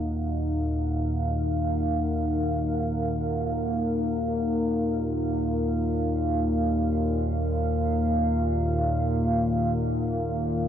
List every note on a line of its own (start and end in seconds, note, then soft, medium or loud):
0.00 10.68 D#2 medium
0.00 10.68 A#2 medium
0.00 10.68 D#4 medium
0.00 10.37 A#4 medium
0.00 10.68 F5 medium
0.00 10.68 F#5 medium
9.17 10.68 D#3 medium
9.45 10.68 C#5 medium